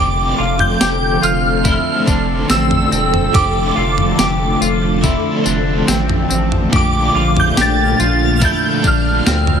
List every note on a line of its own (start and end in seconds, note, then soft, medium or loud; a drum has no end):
0.00 0.33 F1 loud
0.00 1.64 F2 medium
0.00 9.60 D3 medium
0.00 3.33 F3 medium
0.00 9.60 F3 medium
0.00 1.64 A3 medium
0.00 9.60 A3 medium
0.00 1.66 C4 medium
0.00 3.30 C4 medium
0.00 1.66 D4 medium
0.00 0.38 G4 medium
0.00 6.67 A4 medium
0.00 1.67 C5 medium
0.00 0.62 D6 medium
0.38 0.76 F1 loud
0.38 0.80 F4 medium
0.59 1.25 G6 loud
0.59 floor tom medium
0.81 1.18 F1 medium
0.81 1.22 G4 medium
0.81 snare loud
0.81 tambourine loud
1.22 1.78 F1 loud
1.22 1.64 F4 medium
1.22 2.04 F6 medium
1.22 tambourine medium
1.64 2.07 A3 medium
1.64 2.06 C4 medium
1.64 2.08 D4 medium
1.64 2.07 E4 medium
1.64 kick loud
1.64 floor tom medium
1.64 tambourine medium
1.68 2.04 C5 medium
2.06 2.44 F1 loud
2.06 3.34 C4 soft
2.06 2.49 D4 medium
2.06 3.36 D4 soft
2.06 3.33 C5 soft
2.06 kick medium
2.06 tambourine medium
2.10 3.35 A3 medium
2.49 2.87 A1 medium
2.49 2.90 C4 medium
2.49 3.37 E6 loud
2.49 snare medium
2.49 tambourine medium
2.71 floor tom medium
2.92 3.29 E1 loud
2.92 3.34 C4 medium
2.92 tambourine medium
3.14 floor tom medium
3.32 3.72 F1 loud
3.32 5.02 F2 medium
3.32 6.70 F3 medium
3.32 5.01 A3 medium
3.32 6.68 D4 medium
3.32 3.75 G4 medium
3.32 5.00 D6 medium
3.32 kick loud
3.32 floor tom loud
3.32 tambourine medium
3.36 5.04 C4 medium
3.36 5.03 D4 medium
3.36 5.05 C5 medium
3.76 4.14 F1 loud
3.76 4.18 F4 medium
3.98 floor tom medium
4.19 4.56 F1 loud
4.19 4.61 G4 medium
4.19 snare loud
4.19 tambourine loud
4.61 5.17 F1 loud
4.61 5.03 F4 medium
4.61 tambourine medium
5.01 5.44 A3 medium
5.01 5.44 C4 medium
5.01 5.45 D4 medium
5.01 5.46 E4 medium
5.01 kick loud
5.01 floor tom medium
5.01 tambourine medium
5.06 5.43 C5 medium
5.44 5.83 F1 loud
5.44 6.72 C4 medium
5.44 5.87 D4 medium
5.44 6.74 D4 medium
5.44 6.71 C5 medium
5.44 tambourine medium
5.49 6.72 A3 medium
5.87 6.25 A1 medium
5.87 6.29 C4 medium
5.87 snare loud
5.87 tambourine medium
6.09 floor tom medium
6.30 6.67 A1 loud
6.30 6.72 C4 medium
6.30 tambourine medium
6.52 floor tom medium
6.70 7.10 A#1 loud
6.70 8.40 A#2 medium
6.70 9.60 A#2 medium
6.70 8.39 A3 medium
6.70 9.60 D4 medium
6.70 7.15 G4 medium
6.70 kick loud
6.70 floor tom loud
6.70 tambourine medium
6.74 8.42 D4 medium
6.74 8.42 F4 medium
6.74 8.44 A4 medium
6.74 7.39 D6 medium
7.15 7.52 A#1 loud
7.15 7.57 F4 medium
7.15 8.89 F6 medium
7.37 7.59 G6 loud
7.37 floor tom medium
7.42 9.13 A6 medium
7.57 7.94 A#1 loud
7.57 7.99 G4 medium
7.57 snare loud
7.57 tambourine medium
7.62 8.46 A6 loud
7.99 8.55 A#1 loud
7.99 8.42 F4 medium
7.99 tambourine medium
8.40 8.83 A3 medium
8.40 8.84 D4 medium
8.40 8.84 E4 medium
8.40 8.83 F4 medium
8.40 kick loud
8.40 floor tom medium
8.40 tambourine medium
8.45 8.81 A4 medium
8.45 8.86 G6 loud
8.82 9.21 A#1 loud
8.82 9.26 D4 medium
8.82 9.60 F4 soft
8.82 9.60 A4 medium
8.82 kick medium
8.82 tambourine medium
8.87 9.60 D4 medium
8.87 9.60 F6 medium
9.26 9.60 D2 medium
9.26 9.60 C4 medium
9.26 snare loud
9.26 tambourine medium
9.47 floor tom medium